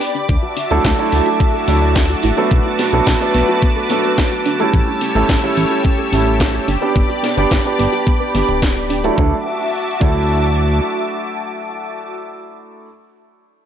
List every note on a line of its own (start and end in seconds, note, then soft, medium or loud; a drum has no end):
0.00 0.25 G4 medium
0.00 0.14 B4 medium
0.00 0.27 D5 medium
0.00 0.27 B5 medium
0.00 2.48 D6 medium
0.00 open hi-hat loud
0.00 shaker medium
0.15 0.24 D4 medium
0.15 closed hi-hat soft
0.15 shaker soft
0.29 0.38 D2 medium
0.29 0.38 D4 medium
0.29 4.70 F#4 medium
0.29 2.49 E5 medium
0.29 6.64 A5 medium
0.29 kick loud
0.29 closed hi-hat medium
0.43 0.52 F#4 medium
0.57 0.66 D4 medium
0.57 open hi-hat loud
0.71 0.79 D2 loud
0.71 0.95 F#3 medium
0.71 0.95 A3 medium
0.71 0.95 D4 medium
0.71 0.95 E4 medium
0.71 0.80 A4 medium
0.71 0.95 A4 medium
0.71 closed hi-hat soft
0.85 0.93 D2 loud
0.85 0.98 D4 medium
0.85 kick loud
0.85 snare loud
0.85 closed hi-hat medium
0.98 1.64 F#3 medium
0.98 1.65 A3 medium
0.98 1.65 D4 medium
0.98 1.65 E4 medium
0.98 1.65 A4 medium
0.98 1.04 D5 medium
1.12 1.21 D2 loud
1.12 1.22 D4 medium
1.12 open hi-hat loud
1.26 1.36 F#4 medium
1.26 closed hi-hat soft
1.40 1.49 D4 medium
1.40 kick loud
1.40 closed hi-hat medium
1.54 1.63 A4 medium
1.67 2.15 D2 loud
1.67 2.34 F#3 medium
1.67 2.34 A3 medium
1.67 1.81 D4 medium
1.67 2.34 D4 medium
1.67 2.34 E4 medium
1.67 2.35 A4 medium
1.67 open hi-hat loud
1.82 1.91 D5 medium
1.82 closed hi-hat soft
1.95 2.09 D4 medium
1.95 kick loud
1.95 snare loud
1.95 closed hi-hat medium
2.09 2.15 F#4 medium
2.09 closed hi-hat soft
2.23 2.32 A1 medium
2.23 2.37 E4 loud
2.23 open hi-hat loud
2.37 2.89 F#3 medium
2.37 2.89 A3 medium
2.37 2.90 B3 medium
2.37 2.90 D4 medium
2.37 2.46 A4 medium
2.37 2.90 A4 medium
2.37 closed hi-hat soft
2.51 2.60 B1 medium
2.51 2.60 B3 medium
2.51 4.71 B4 medium
2.51 4.71 D6 medium
2.51 kick loud
2.51 closed hi-hat medium
2.65 2.75 F#4 medium
2.79 2.88 B3 medium
2.79 snare soft
2.79 open hi-hat loud
2.92 3.01 B1 loud
2.92 3.17 F#3 medium
2.92 3.17 A3 medium
2.92 3.17 B3 medium
2.92 3.18 D4 medium
2.92 3.02 A4 medium
2.92 3.18 A4 medium
2.92 closed hi-hat soft
3.06 3.15 B1 loud
3.06 3.20 B3 medium
3.06 kick loud
3.06 snare loud
3.06 closed hi-hat medium
3.20 3.86 F#3 medium
3.20 3.87 A3 medium
3.20 3.87 B3 medium
3.20 3.87 D4 medium
3.20 3.87 A4 medium
3.20 3.26 B4 medium
3.34 3.43 B1 medium
3.34 3.44 B3 medium
3.34 open hi-hat medium
3.48 3.58 F#4 medium
3.48 closed hi-hat soft
3.62 3.72 B3 medium
3.62 kick loud
3.62 closed hi-hat medium
3.76 3.85 A4 medium
3.89 4.56 F#3 medium
3.89 4.56 A3 medium
3.89 4.56 B3 medium
3.89 4.03 B3 medium
3.89 4.57 D4 medium
3.89 4.57 A4 medium
3.89 open hi-hat medium
4.04 4.13 B4 medium
4.04 closed hi-hat soft
4.18 4.31 B3 medium
4.18 kick loud
4.18 snare loud
4.18 closed hi-hat medium
4.32 4.37 F#4 medium
4.32 closed hi-hat soft
4.46 4.59 D4 loud
4.46 open hi-hat medium
4.59 5.12 G3 medium
4.59 5.12 A3 medium
4.59 5.12 C#4 medium
4.59 5.12 E4 medium
4.59 4.69 A4 medium
4.59 5.12 A4 medium
4.59 closed hi-hat soft
4.73 4.82 A1 loud
4.73 4.83 C#4 medium
4.73 9.14 G4 medium
4.73 6.66 C#5 medium
4.73 6.66 E6 medium
4.73 kick loud
4.73 closed hi-hat medium
4.87 4.97 G4 medium
5.01 5.11 C#4 medium
5.01 open hi-hat medium
5.15 5.24 A1 medium
5.15 5.40 G3 medium
5.15 5.40 A3 medium
5.15 5.40 C#4 medium
5.15 5.40 E4 medium
5.15 5.24 A4 medium
5.15 5.40 A4 medium
5.15 closed hi-hat medium
5.29 5.38 A1 medium
5.29 5.42 C#4 medium
5.29 kick loud
5.29 snare loud
5.29 closed hi-hat medium
5.42 6.09 G3 medium
5.42 6.09 A3 medium
5.42 6.09 C#4 medium
5.42 6.09 E4 medium
5.42 6.10 A4 medium
5.42 5.49 C#5 medium
5.57 5.66 A1 loud
5.57 5.66 C#4 medium
5.57 open hi-hat medium
5.71 5.80 G4 medium
5.71 closed hi-hat soft
5.85 5.94 C#4 medium
5.85 kick loud
5.85 closed hi-hat medium
5.98 6.08 A4 medium
6.12 6.59 A1 loud
6.12 6.66 G3 medium
6.12 6.66 A3 medium
6.12 6.26 C#4 medium
6.12 6.67 C#4 medium
6.12 6.67 E4 medium
6.12 6.67 A4 medium
6.12 open hi-hat medium
6.26 6.35 C#5 medium
6.26 closed hi-hat soft
6.40 6.53 C#4 medium
6.40 kick loud
6.40 snare loud
6.40 closed hi-hat medium
6.54 6.60 G4 medium
6.54 closed hi-hat soft
6.68 6.77 G1 medium
6.68 6.81 D4 loud
6.68 9.16 D5 medium
6.68 9.16 B5 medium
6.68 9.16 D6 medium
6.68 open hi-hat medium
6.81 7.34 B3 medium
6.81 7.34 D4 medium
6.81 7.34 G4 medium
6.81 6.91 B4 medium
6.81 closed hi-hat medium
6.95 7.04 G1 medium
6.95 7.05 B3 medium
6.95 kick loud
6.95 closed hi-hat medium
7.09 7.19 G4 medium
7.09 closed hi-hat soft
7.23 7.32 B3 medium
7.23 snare soft
7.23 open hi-hat medium
7.37 7.46 G1 loud
7.37 7.62 B3 medium
7.37 7.62 D4 medium
7.37 7.62 G4 medium
7.37 7.46 B4 medium
7.37 closed hi-hat soft
7.51 7.60 G1 medium
7.51 7.64 B3 medium
7.51 kick loud
7.51 snare loud
7.51 closed hi-hat medium
7.64 8.31 B3 medium
7.64 8.31 D4 medium
7.64 8.32 G4 medium
7.64 7.71 D5 medium
7.64 closed hi-hat soft
7.79 7.88 G1 medium
7.79 7.88 B3 medium
7.79 open hi-hat medium
7.92 8.02 G4 medium
7.92 closed hi-hat soft
8.06 8.16 B3 medium
8.06 kick loud
8.06 closed hi-hat medium
8.20 8.30 B4 medium
8.34 8.43 G1 loud
8.34 9.00 B3 medium
8.34 8.48 B3 medium
8.34 9.01 D4 medium
8.34 9.01 G4 medium
8.34 open hi-hat medium
8.48 9.10 D1 medium
8.48 8.58 D5 medium
8.48 closed hi-hat soft
8.62 8.75 B3 medium
8.62 kick loud
8.62 snare loud
8.62 closed hi-hat medium
8.76 8.82 G4 medium
8.76 closed hi-hat soft
8.90 9.03 D4 loud
8.90 open hi-hat medium
9.04 9.15 F#3 medium
9.04 9.16 A3 medium
9.04 9.17 D4 medium
9.04 9.17 E4 medium
9.04 9.18 A4 medium
9.04 9.13 B4 medium
9.04 closed hi-hat medium
9.17 9.33 D2 medium
9.17 9.33 F#3 medium
9.17 9.33 A3 medium
9.17 9.33 D4 medium
9.17 9.34 D4 medium
9.17 9.34 E4 medium
9.17 12.16 F#4 medium
9.17 9.34 A4 medium
9.17 12.16 E5 medium
9.17 12.16 A5 medium
9.17 12.16 D6 medium
9.17 kick loud
10.00 10.81 D2 medium
10.00 12.85 F#3 medium
10.00 12.86 A3 medium
10.00 10.17 D4 medium
10.00 12.86 D4 medium
10.00 12.86 E4 medium
10.00 12.87 A4 medium
10.00 kick loud